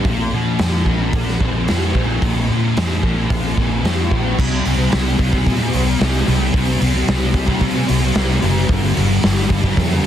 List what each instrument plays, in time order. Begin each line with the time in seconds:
0.05 fingered electric bass A#1, distorted electric guitar A#2, kick, open hi-hat
0.32 fingered electric bass A#2, distorted electric guitar F3
0.59 fingered electric bass F2, distorted electric guitar F3, snare, open hi-hat
0.86 fingered electric bass A#1, distorted electric guitar A#3, kick
1.13 fingered electric bass A#1, distorted electric guitar F3, kick, open hi-hat
1.28 snare
1.41 fingered electric bass A#1, distorted electric guitar C4, kick
1.68 fingered electric bass F2, distorted electric guitar F4, snare, open hi-hat
1.95 fingered electric bass A#1, distorted electric guitar C4, kick
2.22 fingered electric bass A#1, distorted electric guitar A#2, kick, open hi-hat
2.50 fingered electric bass A#2, distorted electric guitar F3
2.77 fingered electric bass F2, distorted electric guitar F3, snare, open hi-hat
3.03 fingered electric bass A#1, distorted electric guitar A#3, kick
3.30 fingered electric bass A#1, distorted electric guitar F3, kick, open hi-hat
3.57 fingered electric bass A#1, distorted electric guitar C4, kick
3.83 fingered electric bass F2, distorted electric guitar F4, snare, open hi-hat
4.11 fingered electric bass A#1, distorted electric guitar C4, kick
4.39 fingered electric bass C2, distorted electric guitar C3 G3 C4, kick, crash
4.65 fingered electric bass C2, distorted electric guitar C3 G3 C4, open hi-hat
4.77 distorted electric guitar G3 C4
4.90 fingered electric bass C2, distorted electric guitar C3 G3, snare, open hi-hat
4.94 distorted electric guitar C4
5.17 fingered electric bass C2, distorted electric guitar C3 G3 C4, kick, open hi-hat
5.31 distorted electric guitar G3 C4, kick
5.46 fingered electric bass A#2, kick, open hi-hat
5.59 distorted electric guitar G3 C4
5.73 fingered electric bass C2, distorted electric guitar C3 G3 C4, open hi-hat
5.86 distorted electric guitar G3 C4
5.99 fingered electric bass C2, distorted electric guitar C3 G3 C4, snare, open hi-hat
6.27 fingered electric bass C2, distorted electric guitar C3 G3 C4, open hi-hat
6.53 fingered electric bass C2, distorted electric guitar C3 G3 C4, kick, open hi-hat
6.79 fingered electric bass C2, distorted electric guitar C3 G3 C4, open hi-hat
6.93 distorted electric guitar G3 C4
7.08 fingered electric bass C2, distorted electric guitar C3 G3 C4, snare, open hi-hat
7.34 distorted electric guitar C3 G3, kick, open hi-hat
7.38 distorted electric guitar C4
7.47 distorted electric guitar G3 C4, kick
7.61 fingered electric bass C3, kick, open hi-hat
7.75 distorted electric guitar G3 C4
7.87 fingered electric bass C2, distorted electric guitar C3 G3 C4, open hi-hat
8.01 distorted electric guitar G3 C4
8.14 fingered electric bass C2, distorted electric guitar C3 G3 C4, snare, open hi-hat
8.40 fingered electric bass F#1, distorted electric guitar C3 G3 C4, open hi-hat
8.67 fingered electric bass G1, distorted electric guitar G2 D3, kick, open hi-hat
8.71 distorted electric guitar G3
8.94 fingered electric bass G1, distorted electric guitar G2 D3 G3, open hi-hat
9.07 distorted electric guitar D3 G3
9.20 distorted electric guitar G2 D3 G3, snare, open hi-hat
9.24 fingered electric bass G1
9.48 fingered electric bass G1, distorted electric guitar G2 D3 G3, kick, open hi-hat
9.62 distorted electric guitar D3 G3, kick
9.77 fingered electric bass F2, kick, open hi-hat
9.90 distorted electric guitar D3 G3
10.03 distorted electric guitar G2